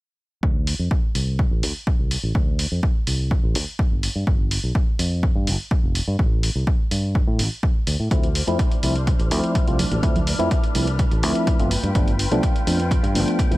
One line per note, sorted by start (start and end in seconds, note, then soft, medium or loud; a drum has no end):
0.43 0.73 D2 medium
0.43 kick loud
0.67 open hi-hat medium
0.79 0.87 F2 medium
0.91 kick loud
1.15 1.45 C2 medium
1.15 open hi-hat medium
1.39 kick loud
1.51 1.63 A1 medium
1.63 1.71 D2 medium
1.63 open hi-hat medium
1.87 kick loud
1.99 2.15 C2 medium
2.11 open hi-hat medium
2.23 2.31 A1 medium
2.35 2.65 D2 medium
2.35 kick loud
2.59 open hi-hat medium
2.72 2.79 F2 medium
2.83 kick loud
3.07 3.37 C2 medium
3.07 open hi-hat loud
3.31 kick loud
3.44 3.55 A1 medium
3.55 3.64 D2 medium
3.55 open hi-hat loud
3.79 kick loud
3.92 4.07 G1 medium
4.03 open hi-hat loud
4.16 4.23 G2 medium
4.27 4.57 G1 medium
4.27 kick loud
4.51 open hi-hat loud
4.64 4.71 B1 medium
4.75 kick loud
4.99 5.29 F2 medium
4.99 open hi-hat loud
5.23 kick loud
5.35 5.49 G2 medium
5.47 5.56 G1 medium
5.47 open hi-hat loud
5.71 kick loud
5.84 6.00 F1 medium
5.95 open hi-hat loud
6.08 6.15 G2 medium
6.19 6.49 A1 medium
6.19 kick loud
6.43 open hi-hat medium
6.55 6.63 C2 medium
6.67 kick loud
6.91 7.21 G2 medium
6.91 open hi-hat loud
7.15 kick loud
7.27 7.41 A2 medium
7.39 7.47 A1 medium
7.39 open hi-hat loud
7.63 kick loud
7.87 7.96 D2 medium
7.87 open hi-hat loud
8.00 8.07 A2 medium
8.11 8.41 D2 medium
8.11 8.27 F3 medium
8.11 8.27 A3 medium
8.11 8.27 C4 medium
8.11 11.68 D4 medium
8.11 8.27 E4 medium
8.11 10.01 C5 medium
8.11 11.68 F6 medium
8.11 kick loud
8.11 closed hi-hat medium
8.23 closed hi-hat soft
8.35 open hi-hat loud
8.47 8.55 F2 medium
8.47 8.57 F3 medium
8.47 8.57 A3 medium
8.47 8.57 C4 medium
8.47 8.57 E4 medium
8.47 closed hi-hat soft
8.59 kick loud
8.59 closed hi-hat medium
8.71 closed hi-hat soft
8.83 9.13 C2 medium
8.83 8.93 F3 medium
8.83 8.93 A3 medium
8.83 8.93 C4 medium
8.83 8.93 E4 medium
8.83 open hi-hat loud
8.96 closed hi-hat soft
9.07 kick loud
9.07 closed hi-hat medium
9.19 9.31 A1 medium
9.19 closed hi-hat soft
9.31 9.39 D2 medium
9.31 9.64 F3 medium
9.31 9.64 A3 medium
9.31 9.65 C4 medium
9.31 9.65 E4 medium
9.31 open hi-hat loud
9.44 closed hi-hat soft
9.55 kick loud
9.55 closed hi-hat medium
9.67 9.83 C2 medium
9.67 9.77 F3 medium
9.67 9.77 A3 medium
9.67 9.77 C4 medium
9.67 9.77 F4 medium
9.67 closed hi-hat soft
9.79 open hi-hat loud
9.79 tambourine medium
9.79 high conga medium
9.79 low conga medium
9.91 9.99 A1 medium
9.91 closed hi-hat soft
9.91 tambourine soft
9.91 high conga medium
10.03 10.33 D2 medium
10.03 10.19 F3 medium
10.03 10.19 A3 medium
10.03 10.19 C4 medium
10.03 10.19 E4 medium
10.03 13.57 B4 medium
10.03 kick loud
10.03 closed hi-hat medium
10.03 tambourine soft
10.15 closed hi-hat soft
10.15 tambourine soft
10.15 low conga medium
10.27 open hi-hat medium
10.27 tambourine medium
10.39 10.47 F2 medium
10.39 10.48 F3 medium
10.39 10.49 A3 medium
10.39 10.49 C4 medium
10.39 10.49 E4 loud
10.39 closed hi-hat soft
10.51 kick loud
10.51 closed hi-hat medium
10.51 tambourine medium
10.64 closed hi-hat soft
10.64 tambourine soft
10.75 11.05 C2 medium
10.75 10.85 F3 medium
10.75 10.85 A3 medium
10.75 10.85 C4 medium
10.75 10.85 E4 medium
10.75 open hi-hat medium
10.87 closed hi-hat soft
10.87 tambourine soft
10.99 kick loud
10.99 closed hi-hat medium
11.11 11.23 A1 medium
11.11 closed hi-hat soft
11.23 11.31 D2 medium
11.23 11.57 F3 medium
11.23 11.57 A3 medium
11.23 11.57 C4 medium
11.23 11.57 E4 medium
11.23 open hi-hat loud
11.35 closed hi-hat soft
11.47 kick loud
11.47 closed hi-hat medium
11.59 11.75 G1 medium
11.59 11.69 F3 medium
11.59 11.69 A3 medium
11.59 11.69 C4 medium
11.59 11.69 F4 medium
11.59 closed hi-hat soft
11.71 13.57 F4 medium
11.71 13.57 G5 medium
11.71 open hi-hat loud
11.71 tambourine medium
11.71 high conga medium
11.83 11.91 G2 medium
11.83 closed hi-hat soft
11.83 tambourine soft
11.83 high conga medium
11.95 12.25 G1 medium
11.95 12.11 F3 medium
11.95 12.11 A3 medium
11.95 12.11 B3 medium
11.95 12.11 D4 medium
11.95 kick loud
11.95 closed hi-hat medium
12.08 closed hi-hat soft
12.08 tambourine soft
12.19 open hi-hat medium
12.19 tambourine medium
12.31 12.39 B1 medium
12.31 12.41 F3 medium
12.31 12.41 A3 medium
12.31 12.41 B3 medium
12.31 12.41 D4 loud
12.31 closed hi-hat soft
12.43 kick loud
12.43 closed hi-hat medium
12.56 closed hi-hat soft
12.67 12.97 F2 medium
12.67 12.77 F3 medium
12.67 12.77 A3 medium
12.67 12.77 B3 medium
12.67 12.77 D4 medium
12.67 open hi-hat medium
12.67 tambourine medium
12.79 closed hi-hat soft
12.79 tambourine soft
12.91 kick loud
12.91 closed hi-hat medium
13.03 13.17 G2 loud
13.03 closed hi-hat soft
13.14 13.23 G1 medium
13.14 13.48 F3 medium
13.14 13.49 A3 medium
13.14 13.49 B3 medium
13.14 13.49 D4 medium
13.14 open hi-hat medium
13.14 tambourine medium
13.28 closed hi-hat soft
13.39 kick loud
13.39 closed hi-hat medium
13.51 13.57 F1 medium
13.51 13.57 F3 medium
13.51 13.57 A3 medium
13.51 13.57 B3 medium
13.51 13.57 E4 medium
13.51 closed hi-hat soft
13.51 tambourine soft